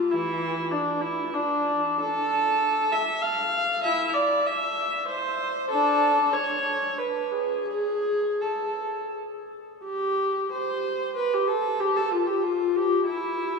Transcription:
viola
Already playing: F4
0.11 E3 E4
0.71 D4
1.01 E4
1.34 D4
2.00 A4
2.92 E5
3.22 F5
3.84 E4 E5
4.13 D5
4.46 E5
5.08 C5
5.71 D4 A4
6.33 C#5
6.98 B4
7.32 G#4
7.68 G#4
8.41 A4
9.84 G4
10.52 C5
11.16 B4
11.34 G4
11.48 A4
11.80 G4
11.96 A4
12.11 F4
12.27 G4
12.43 F4
12.76 G4
13.06 E4

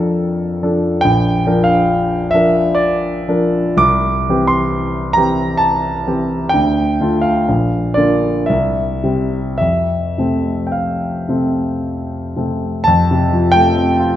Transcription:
grand piano
Already playing: F2 F3 D4 A4 A#4
0.63 F3 D4 A4
1.01 A#1 G5
1.46 F3 D4 A#4
1.64 F5
2.31 F3 D4 E5
2.35 A#4
2.75 D5
3.28 F3 D4 A#4
3.77 C2 D6
4.29 E3 C4 G4
4.47 C6
5.13 E3 C4 A#5
5.17 G4
5.57 A5
6.07 E3 C4 G4
6.49 D2 G5
7.01 D3 A3 F4
7.21 F5
7.49 A#1
7.94 D3 A#3 D5
7.99 F4
8.46 C2 E5
9.03 C3 G3 C4
9.58 F2 E5
10.18 C3 A3 C4
10.67 G5
10.72 F5
11.29 C3 A3 C4
12.36 C3 A3 C4
12.84 F2 A5
13.11 C3
13.33 F3
13.52 A3 G5
13.77 C4
13.99 F4

